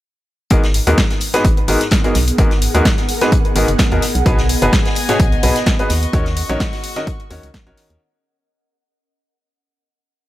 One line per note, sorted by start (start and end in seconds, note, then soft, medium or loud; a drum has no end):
0.50 0.80 G#1 loud
0.50 0.61 G#2 medium
0.50 5.90 B3 medium
0.50 0.61 B3 medium
0.50 0.61 D#4 medium
0.50 0.61 F#4 medium
0.50 0.61 G#4 medium
0.50 0.61 A#4 medium
0.50 kick loud
0.50 closed hi-hat medium
0.63 snare medium
0.63 closed hi-hat soft
0.74 closed hi-hat medium
0.74 open hi-hat loud
0.87 0.94 D#2 medium
0.87 0.96 G#2 medium
0.87 0.96 B3 medium
0.87 0.96 D#4 medium
0.87 0.96 F#4 medium
0.87 0.96 G#4 medium
0.87 6.75 G#4 medium
0.87 0.96 A#4 loud
0.87 closed hi-hat medium
0.87 closed hi-hat soft
0.98 kick loud
0.98 snare loud
0.98 closed hi-hat medium
1.10 snare soft
1.10 closed hi-hat soft
1.20 8.01 F#5 medium
1.20 closed hi-hat medium
1.20 open hi-hat loud
1.34 1.43 G#2 medium
1.34 1.43 B3 medium
1.34 1.43 D#4 medium
1.34 1.43 F#4 medium
1.34 1.43 G#4 medium
1.34 1.43 B4 loud
1.34 snare soft
1.34 closed hi-hat medium
1.45 1.61 G#1 medium
1.45 kick loud
1.45 closed hi-hat medium
1.51 4.78 A#4 medium
1.57 closed hi-hat soft
1.68 1.77 G#1 medium
1.68 1.79 G#2 medium
1.68 1.79 B3 medium
1.68 1.79 D#4 medium
1.68 1.79 F#4 medium
1.68 1.79 G#4 medium
1.68 1.79 A#4 medium
1.68 closed hi-hat medium
1.68 open hi-hat loud
1.81 snare soft
1.81 closed hi-hat medium
1.91 kick loud
1.91 snare loud
1.91 closed hi-hat medium
2.04 2.13 G#2 medium
2.04 2.13 B3 medium
2.04 2.13 D#4 medium
2.04 2.13 F#4 medium
2.04 2.13 G#4 medium
2.04 2.13 A#4 medium
2.04 closed hi-hat soft
2.15 2.31 B1 medium
2.15 snare soft
2.15 closed hi-hat medium
2.15 open hi-hat loud
2.28 closed hi-hat medium
2.28 closed hi-hat soft
2.38 2.68 G#1 loud
2.38 2.49 G#2 medium
2.38 2.49 B3 medium
2.38 2.49 D#4 medium
2.38 2.49 F#4 medium
2.38 2.49 G#4 medium
2.38 2.49 A#4 loud
2.38 kick loud
2.38 closed hi-hat medium
2.51 snare soft
2.51 closed hi-hat soft
2.62 closed hi-hat medium
2.62 open hi-hat loud
2.74 2.82 D#2 medium
2.74 2.83 G#2 medium
2.74 2.83 B3 medium
2.74 2.83 D#4 medium
2.74 2.83 F#4 medium
2.74 2.83 G#4 medium
2.74 2.83 A#4 loud
2.74 snare soft
2.74 closed hi-hat medium
2.85 kick loud
2.85 snare loud
2.85 closed hi-hat medium
2.97 snare soft
2.97 closed hi-hat soft
3.09 closed hi-hat medium
3.09 open hi-hat loud
3.21 3.30 G#2 medium
3.21 3.30 B3 medium
3.21 3.30 D#4 medium
3.21 3.30 F#4 medium
3.21 3.30 G#4 medium
3.21 3.30 B4 loud
3.21 snare medium
3.21 closed hi-hat medium
3.32 kick loud
3.32 closed hi-hat soft
3.32 closed hi-hat medium
3.45 closed hi-hat soft
3.56 3.64 G#1 loud
3.56 3.66 G#2 medium
3.56 3.66 B3 medium
3.56 3.66 D#4 medium
3.56 3.66 F#4 medium
3.56 3.66 G#4 medium
3.56 3.66 A#4 medium
3.56 closed hi-hat medium
3.56 open hi-hat loud
3.68 3.76 F#1 medium
3.68 closed hi-hat soft
3.68 closed hi-hat medium
3.78 kick loud
3.78 snare loud
3.78 closed hi-hat medium
3.92 3.99 D#2 loud
3.92 4.01 B2 medium
3.92 4.01 B3 medium
3.92 4.01 D#4 medium
3.92 4.01 F#4 medium
3.92 4.01 G#4 medium
3.92 4.01 A#4 medium
3.92 closed hi-hat soft
4.02 snare soft
4.02 closed hi-hat medium
4.02 open hi-hat loud
4.15 4.22 B1 loud
4.15 closed hi-hat medium
4.26 4.55 B1 loud
4.26 4.36 B2 medium
4.26 4.36 B3 medium
4.26 4.36 D#4 medium
4.26 4.36 F#4 medium
4.26 4.36 G#4 medium
4.26 5.88 G#4 medium
4.26 4.36 B4 loud
4.26 7.97 D#5 medium
4.26 5.88 G#5 medium
4.26 kick loud
4.26 closed hi-hat medium
4.26 closed hi-hat soft
4.38 snare medium
4.38 closed hi-hat soft
4.47 8.01 D#5 medium
4.47 closed hi-hat medium
4.47 open hi-hat loud
4.62 4.69 F#1 medium
4.62 4.71 B2 medium
4.62 4.71 B3 medium
4.62 4.71 D#4 medium
4.62 4.71 F#4 medium
4.62 4.71 G#4 medium
4.62 4.71 B4 loud
4.62 closed hi-hat soft
4.73 kick loud
4.73 snare loud
4.73 closed hi-hat soft
4.73 closed hi-hat medium
4.85 snare medium
4.85 closed hi-hat soft
4.95 closed hi-hat medium
4.95 open hi-hat loud
5.09 5.18 B2 medium
5.09 5.18 B3 medium
5.09 5.18 D#4 medium
5.09 5.18 F#4 medium
5.09 5.18 G#4 medium
5.09 5.18 C#5 loud
5.09 snare soft
5.09 closed hi-hat medium
5.20 5.36 B1 medium
5.20 kick loud
5.20 closed hi-hat soft
5.20 closed hi-hat medium
5.32 closed hi-hat soft
5.43 5.52 B1 medium
5.43 5.54 B2 medium
5.43 5.54 B3 medium
5.43 5.54 D#4 medium
5.43 5.54 F#4 medium
5.43 5.54 G#4 medium
5.43 5.54 B4 medium
5.43 closed hi-hat medium
5.43 open hi-hat loud
5.56 snare soft
5.56 closed hi-hat soft
5.66 kick loud
5.66 snare loud
5.66 closed hi-hat medium
5.66 closed hi-hat soft
5.79 5.88 B3 medium
5.79 5.88 D#4 medium
5.79 5.88 F#4 medium
5.79 5.88 G#4 medium
5.79 5.88 B4 medium
5.79 closed hi-hat soft
5.89 6.06 D#2 loud
5.89 8.01 C#4 medium
5.89 7.99 F#4 medium
5.89 7.99 C#6 medium
5.89 snare soft
5.89 closed hi-hat medium
5.89 open hi-hat loud
6.03 closed hi-hat soft
6.13 6.43 D#2 loud
6.13 6.24 D#3 medium
6.13 6.24 C#4 medium
6.13 6.24 D#4 medium
6.13 6.24 F#4 medium
6.13 6.24 A#4 medium
6.13 8.01 A#4 medium
6.13 6.24 C#5 loud
6.13 kick loud
6.13 closed hi-hat soft
6.13 closed hi-hat medium
6.26 snare soft
6.26 closed hi-hat soft
6.37 closed hi-hat medium
6.37 open hi-hat loud
6.49 6.57 A#1 medium
6.49 6.58 D#3 medium
6.49 6.58 C#4 medium
6.49 6.58 D#4 medium
6.49 6.58 F#4 medium
6.49 6.58 A#4 medium
6.49 6.58 C#5 loud
6.49 snare soft
6.49 closed hi-hat soft
6.60 kick loud
6.60 snare loud
6.60 closed hi-hat medium
6.60 closed hi-hat soft
6.73 snare soft
6.73 open hi-hat medium
6.84 closed hi-hat medium
6.84 open hi-hat loud
6.96 7.05 D#3 medium
6.96 7.05 C#4 medium
6.96 7.05 D#4 medium
6.96 7.05 F#4 medium
6.96 7.05 A#4 medium
6.96 7.05 D#5 loud
6.96 snare medium
6.96 closed hi-hat medium
7.07 kick loud
7.07 closed hi-hat medium
7.20 closed hi-hat soft
7.30 7.39 D#2 loud
7.30 7.47 D#3 medium
7.30 7.47 C#4 medium
7.30 7.47 D#4 medium
7.30 7.47 F#4 medium
7.30 7.47 A#4 medium
7.30 7.47 C#5 medium
7.30 closed hi-hat medium
7.30 open hi-hat loud
7.43 7.50 C#2 medium
7.43 closed hi-hat medium
7.43 closed hi-hat soft
7.54 kick loud
7.54 snare loud
7.54 closed hi-hat medium
7.54 closed hi-hat soft
7.67 7.74 A#1 loud
7.67 7.98 D#3 medium
7.67 7.98 C#4 medium
7.67 7.98 D#4 medium
7.67 7.98 F#4 medium
7.67 7.98 A#4 medium
7.67 7.98 C#5 loud
7.67 closed hi-hat soft
7.77 snare soft
7.77 closed hi-hat medium
7.77 open hi-hat loud
7.90 7.97 D#2 loud
7.90 closed hi-hat medium